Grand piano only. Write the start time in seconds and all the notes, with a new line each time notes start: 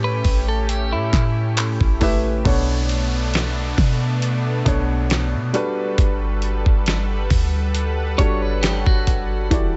Already playing: A3 E4 G4 B4 C#5
2.00 A3 E4 G4 B4 E5
2.45 B2 B3 D4 A4 C#5
4.65 B2 B3 D4 A4 C#5
5.53 G3 D4 F#4 A4 B4
8.18 G3 D4 F#4 A4 C#5
9.50 E3 E4 F#4 G4 A4 D5